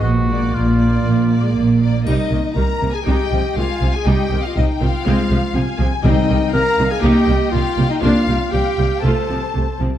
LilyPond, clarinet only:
\new Staff \with { instrumentName = "Clarinet" } { \time 4/4 \key bes \phrygian \tempo 4 = 120 r1 | \key ees \major ees'4 bes'8. aes'16 g'4 f'8. aes'16 | g'8. f'16 ees'8 f'2 r8 | ees'4 bes'8. aes'16 g'4 f'8. ees'16 |
f'4 g'4 a'4. r8 | }